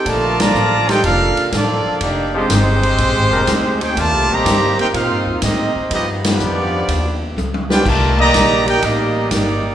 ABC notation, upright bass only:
X:1
M:4/4
L:1/8
Q:"Swing" 1/4=123
K:Bb
V:1 name="Upright bass" clef=bass
B,,,2 A,,,2 F,,, z A,,, z | F,,,2 G,,,2 (3B,,, _A,,, F,,, D,,2 | (3E,, C,, B,,, G,, z (3B,, G,, E,, A,, z | G,,2 F,,2 E,,2 _D,,2 |
C,,2 B,,,2 A,,,2 G,,,2 |]